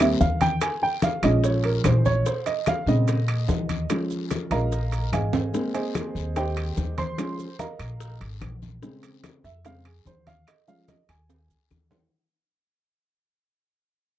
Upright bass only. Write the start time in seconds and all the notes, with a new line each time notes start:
Already playing: D#2
0.20 D#2
1.23 A#1
1.84 A#1
2.86 A#2
3.48 D#2
4.51 A#1
5.12 G#1
6.15 D#2
6.77 D#2
7.79 A#1
8.21 G#1
8.41 A#1
9.44 F2
10.05 D#2
11.09 D#2
11.50 C#2
11.71 D#2